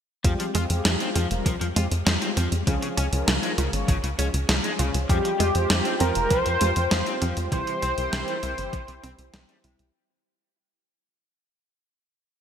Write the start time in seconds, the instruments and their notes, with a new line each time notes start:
0.24 analog synth bass F2, synth arpeggio sound F3, overdriven electric guitar F3, analog polysynth G3 G#3 C4 F4 G4, kick, closed hi-hat
0.40 overdriven electric guitar F3, closed hi-hat
0.55 analog synth bass F2, synth arpeggio sound G#3, overdriven electric guitar F4, closed hi-hat
0.70 analog synth bass F2, analog polysynth G#3 C4 F4 G4 G#4, closed hi-hat
0.85 analog synth bass F2, synth arpeggio sound F3, overdriven electric guitar F3, snare, closed hi-hat
1.00 overdriven electric guitar C4, closed hi-hat
1.15 analog synth bass F2, overdriven electric guitar F3, synth arpeggio sound C4, closed hi-hat
1.31 analog synth bass F1, analog polysynth G3 G#3 C4 F4 A#4, closed hi-hat
1.46 analog synth bass C2, synth arpeggio sound F3, overdriven electric guitar F3, kick, closed hi-hat
1.61 analog synth bass F2, overdriven electric guitar F3, closed hi-hat
1.76 analog synth bass F2, analog polysynth G3 G#3 C4 F4 G4, synth arpeggio sound G#3, overdriven electric guitar F4, closed hi-hat
1.91 analog synth bass F2, closed hi-hat
2.06 analog synth bass F2, overdriven electric guitar F3, synth arpeggio sound F3, snare, closed hi-hat
2.22 analog polysynth G3 G#3 C4 F4 G4, overdriven electric guitar C4, closed hi-hat
2.37 analog synth bass F2, overdriven electric guitar F3, synth arpeggio sound C4, closed hi-hat
2.52 analog synth bass F2, closed hi-hat
2.67 analog synth bass C#2, overdriven electric guitar C#3, analog polysynth F3 G#3 C#4 F4 G#4, synth arpeggio sound F3, kick, closed hi-hat
2.82 overdriven electric guitar C#3, closed hi-hat
2.97 analog synth bass C#2, synth arpeggio sound C#4, overdriven electric guitar C#4, closed hi-hat
3.12 analog synth bass C#2, analog polysynth F3 G#3 C#4 F4 A#4, closed hi-hat
3.28 analog synth bass C#2, overdriven electric guitar C#3, synth arpeggio sound F3, snare, closed hi-hat
3.43 overdriven electric guitar G#3, closed hi-hat
3.58 analog synth bass C#2, overdriven electric guitar C#3, synth arpeggio sound F4, closed hi-hat
3.73 analog synth bass G#1, analog polysynth F3 G#3 C#4 F4 C#5, closed hi-hat
3.88 analog synth bass G#1, overdriven electric guitar C#3, synth arpeggio sound F3, kick, closed hi-hat
4.04 analog synth bass C#2, overdriven electric guitar C#3, closed hi-hat
4.19 analog synth bass C#2, analog polysynth F3 G#3 C#4 F4 G#4, overdriven electric guitar C#4, synth arpeggio sound C#4, closed hi-hat
4.34 analog synth bass C#2, closed hi-hat
4.49 analog synth bass C#2, overdriven electric guitar C#3, synth arpeggio sound F3, snare, closed hi-hat
4.64 analog polysynth F3 G#3 C#4 F4 G#4, overdriven electric guitar G#3, closed hi-hat
4.79 analog synth bass C#2, overdriven electric guitar C#3, synth arpeggio sound F4, closed hi-hat
4.94 analog synth bass C#2, closed hi-hat
5.09 analog synth bass F2, overdriven electric guitar F3, synth arpeggio sound F3, analog polysynth G3 G#3 C4 F4 G4, analog synth pad F4 C5 G5, analog synth lead G4, kick, closed hi-hat
5.24 overdriven electric guitar F3, closed hi-hat
5.40 analog synth bass F2, synth arpeggio sound G#3, overdriven electric guitar F4, closed hi-hat
5.55 analog synth bass F2, analog polysynth G#3 C4 F4 G4 C5, closed hi-hat
5.70 analog synth bass F2, overdriven electric guitar F3, synth arpeggio sound F3, snare, closed hi-hat
5.85 overdriven electric guitar C4, closed hi-hat
6.00 analog synth bass F2, overdriven electric guitar F3, synth arpeggio sound C4, analog synth lead A#4, closed hi-hat
6.15 analog synth bass F1, analog polysynth G3 G#3 C4 F4 A#4, closed hi-hat
6.30 analog synth bass C2, overdriven electric guitar F3, synth arpeggio sound F3, analog synth lead C5, kick, closed hi-hat
6.46 analog synth bass F2, overdriven electric guitar F3, closed hi-hat
6.61 analog synth bass F2, analog polysynth G3 G#3 C4 F4 G4, synth arpeggio sound G#3, overdriven electric guitar F4, closed hi-hat
6.76 analog synth bass F2, closed hi-hat
6.91 analog synth bass F2, overdriven electric guitar F3, synth arpeggio sound F3, snare, closed hi-hat
7.06 analog polysynth G3 G#3 C4 F4 G4, overdriven electric guitar C4, closed hi-hat
7.22 analog synth bass F2, overdriven electric guitar F3, synth arpeggio sound C4, closed hi-hat
7.37 analog synth bass F2, closed hi-hat
7.52 analog synth bass C2, overdriven electric guitar C3, analog polysynth E3 G3 C4 E4 G4, synth arpeggio sound E3, analog synth pad E4 G4 G5, analog synth lead C5, kick, closed hi-hat
7.67 overdriven electric guitar C3, closed hi-hat
7.82 analog synth bass C2, synth arpeggio sound C4, overdriven electric guitar C4, closed hi-hat
7.97 analog synth bass C2, analog polysynth E3 G3 C4 E4 A#4, closed hi-hat
8.13 analog synth bass C2, overdriven electric guitar C3, synth arpeggio sound E3, snare, closed hi-hat
8.28 overdriven electric guitar G3, closed hi-hat
8.43 analog synth bass C2, overdriven electric guitar C3, synth arpeggio sound E4, closed hi-hat
8.58 analog synth bass G1, analog polysynth E3 G3 C4 E4 C5, closed hi-hat
8.73 analog synth bass A#1, overdriven electric guitar C3, synth arpeggio sound E3, kick, closed hi-hat
8.88 analog synth bass C2, overdriven electric guitar C3, closed hi-hat
9.03 analog synth bass C2, analog polysynth E3 G3 C4 E4 G4, overdriven electric guitar C4, synth arpeggio sound C4, closed hi-hat
9.19 analog synth bass C2, closed hi-hat
9.34 analog synth bass C2, overdriven electric guitar C3, synth arpeggio sound E3, snare, closed hi-hat
9.49 analog polysynth E3 G3 C4 E4 G4, overdriven electric guitar G3, closed hi-hat
9.64 analog synth bass C2, overdriven electric guitar C3, analog polysynth E3 G3 C4 E4 G4, synth arpeggio sound E4, closed hi-hat
9.79 analog synth bass C2, closed hi-hat